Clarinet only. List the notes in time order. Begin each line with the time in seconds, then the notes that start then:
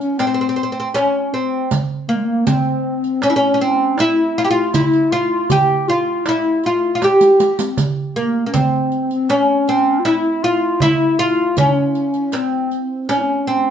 0.01 C#4
0.18 C4
0.95 C#4
1.33 C4
2.08 A#3
2.15 G#3
2.23 A#3
2.46 C4
3.23 C#4
3.36 C#4
3.96 E4
4.50 F4
4.74 F4
4.85 E4
5.11 F4
5.50 G4
5.88 F4
6.26 E4
6.64 F4
7.02 G4
7.59 C4
8.16 A#3
8.47 C#4
8.55 C4
9.12 C4
9.30 C#4
9.99 F4
10.05 E4
10.43 F4
10.82 E4
11.19 F4
11.58 C#4
12.35 C4
13.09 C#4
13.17 E4
13.23 C#4